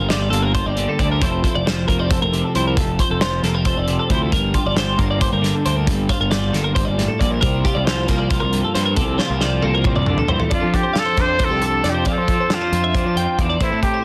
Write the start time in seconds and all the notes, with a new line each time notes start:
Already playing: G2 A#3 F4
0.00 G1
0.09 G3 D5, snare, closed hi-hat
0.30 G1 A#3 A4, closed hi-hat
0.42 A#4
0.55 F4 C5, kick, closed hi-hat
0.66 G1 G4 D5
0.77 D3, closed hi-hat
0.89 A4
0.99 D2 D4 D5, kick, closed hi-hat
1.12 A#4
1.21 F1 F2 F3 C4 E4 A4 C5, kick, closed hi-hat
1.43 A4 C5, kick, closed hi-hat
1.55 F1 D5
1.66 F3 C5, snare, closed hi-hat
1.88 F1 A#3 A#4, kick, closed hi-hat
1.99 C4 D5
2.10 A4 C5, kick, closed hi-hat
2.22 F1 A#4
2.33 C3, closed hi-hat
2.44 A4
2.55 C2 E4 C5, closed hi-hat
2.67 A#4
2.76 F1 F2 A4, kick, closed hi-hat
2.99 C5, kick, closed hi-hat
3.10 F1 A4
3.21 F3 C5, snare, closed hi-hat
3.43 F1 A#3 A4, snare, closed hi-hat
3.54 C4 A#4
3.65 A4 C5, kick, closed hi-hat
3.77 F1 D5
3.88 C3, closed hi-hat
3.99 A4
4.10 D2 E4 C5, kick, closed hi-hat
4.22 A4
4.31 G1 G2 A#4, kick, closed hi-hat
4.54 F4 G4, kick, closed hi-hat
4.66 G1 D5
4.76 G3 C5, snare, closed hi-hat
4.98 G1 A#3 A#4, kick, closed hi-hat
5.11 D5
5.21 G4 C5, kick, closed hi-hat
5.32 G1 A#4
5.42 D3, snare, closed hi-hat
5.55 A4
5.66 D2 D4 C5, closed hi-hat
5.77 A#4
5.87 G1 G2 A4, kick, closed hi-hat
6.09 F4 C5, kick, closed hi-hat
6.20 G1 A#4
6.31 G3 D5, snare, closed hi-hat
6.53 G1 A#3 A4, snare, closed hi-hat
6.64 A#4
6.75 G2 C5, kick, closed hi-hat
6.85 G1 D5
6.98 A2, snare, closed hi-hat
7.08 A4
7.19 A#1 A#2 D5, kick, closed hi-hat
7.32 A#4
7.41 C2 C3 A#4, kick, closed hi-hat
7.65 F4 G4, kick, closed hi-hat
7.75 C2 D5
7.85 F3 C5, snare, closed hi-hat
8.07 C2 A#3 A#4, kick, snare, closed hi-hat
8.18 D5
8.29 F4 C5, kick, closed hi-hat
8.40 C2 A#4
8.53 G2, closed hi-hat
8.64 A4
8.74 G2 C4 C5, snare, closed hi-hat
8.86 A#4
8.96 C2 C3 A4, kick, closed hi-hat
9.18 F4 C5, snare
9.29 C2 A#4
9.41 F3 D5, snare
9.62 C2 A#3 A4, high tom
9.74 A#4
9.84 C3 C5, kick, mid tom
9.96 C2 D5, mid tom
10.06 D3, mid tom
10.18 A4, floor tom
10.28 G2 E3 C5, floor tom
10.40 A4, floor tom
10.50 F2 D4 F4 D5, kick, closed hi-hat
10.61 F3 A4
10.73 D4 G4, kick, closed hi-hat
10.83 C5
10.93 F3 D4 F5, snare, closed hi-hat
10.99 A4
11.06 C5
11.17 F2 D4, kick, snare, closed hi-hat
11.21 C5
11.28 D5
11.39 D4 C5, kick, closed hi-hat
11.45 A4
11.50 C2 G4
11.61 C3 D4 A4, closed hi-hat
11.66 A4
11.84 F2 D4 D5, snare, closed hi-hat
11.90 G4
11.95 C5
12.05 F2 F3 C4 D4 F4 D5, kick, closed hi-hat
12.12 A4
12.18 F3 C5
12.28 C4, kick, closed hi-hat
12.40 C5
12.50 F3 D4 A4, snare, closed hi-hat
12.54 F4
12.62 C5
12.72 F2 C4, closed hi-hat
12.84 E5
12.95 D4 C5, kick, closed hi-hat
13.05 F3 D5
13.16 F2 C4 G5, closed hi-hat
13.38 E2 D4 F5, kick, closed hi-hat
13.50 D5
13.60 A1 A2 A3 C4 E4 C5, kick, closed hi-hat
13.72 A2 A4
13.83 C4 G4, kick, closed hi-hat
13.94 C5